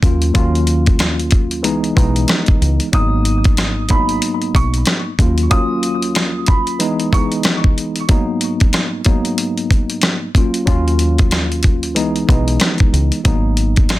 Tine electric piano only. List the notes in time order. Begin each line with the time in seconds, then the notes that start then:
0.02 D#2 F#3 A#3 C#4 F4
0.33 D#2 F#3 A#3 C#4 F4
1.62 C#2 E3 G#3 B3 D#4
1.95 C#2 E3 G#3 B3 D#4
2.92 G#2 F#3 A#3 B3 D#4
3.88 G#2 F#3 A#3 B3 D#4
5.19 D#2 F#3 A#3 C#4 F4
5.49 D#2 F#3 A#3 C#4 F4
6.78 C#2 E3 G#3 B3 D#4
7.12 C#2 E3 G#3 B3 D#4
8.08 G#2 F#3 A#3 B3 D#4
9.05 G#2 F#3 A#3 B3 D#4
10.35 D#2 F#3 A#3 C#4 F4
10.65 D#2 F#3 A#3 C#4 F4
11.94 C#2 E3 G#3 B3 D#4
12.27 C#2 E3 G#3 B3 D#4
13.24 G#2 F#3 A#3 B3 D#4